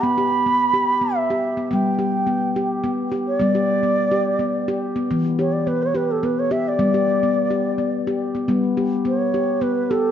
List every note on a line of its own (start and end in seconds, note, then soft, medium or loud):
0.02 0.18 B3 medium
0.02 1.17 B5 loud
0.18 0.46 G4 medium
0.46 0.74 B3 medium
0.74 1.02 G4 medium
1.01 1.30 B3 medium
1.16 1.72 E5 medium
1.30 1.59 G4 medium
1.57 1.70 B3 medium
1.71 3.38 G3 medium
1.71 2.00 B3 medium
1.71 2.97 G5 medium
1.99 2.28 G4 medium
2.27 2.56 B3 medium
2.56 2.85 G4 medium
2.84 3.13 B3 medium
3.12 3.41 G4 medium
3.28 3.40 C#5 loud
3.40 5.07 G3 medium
3.40 3.55 B3 medium
3.40 4.78 D5 loud
3.55 3.84 G4 medium
3.83 4.12 B3 medium
4.11 4.40 G4 medium
4.39 4.68 B3 medium
4.68 4.97 G4 medium
4.96 5.09 B3 medium
5.11 6.77 E3 medium
5.11 5.39 B3 medium
5.39 5.67 G4 medium
5.39 5.54 C#5 medium
5.53 5.69 D5 medium
5.67 5.95 B3 medium
5.67 5.84 B4 medium
5.82 5.97 C#5 medium
5.95 6.23 G4 medium
5.95 6.13 B4 medium
6.11 6.26 A4 medium
6.23 6.51 B3 medium
6.23 6.41 B4 medium
6.39 6.53 C#5 medium
6.51 6.79 G4 medium
6.51 6.70 E5 medium
6.68 7.94 D5 medium
6.79 8.45 G3 medium
6.79 6.94 B3 medium
6.94 7.22 G4 medium
7.23 7.51 B3 medium
7.50 7.79 G4 medium
7.78 8.07 B3 medium
8.07 8.35 G4 medium
8.35 8.47 B3 medium
8.48 10.12 G3 medium
8.48 8.77 B3 medium
8.77 9.05 G4 medium
9.05 9.33 B3 medium
9.05 9.64 C#5 medium
9.34 9.62 G4 medium
9.61 9.90 B3 medium
9.61 9.92 B4 medium
9.91 10.12 G4 medium
9.91 10.12 A4 medium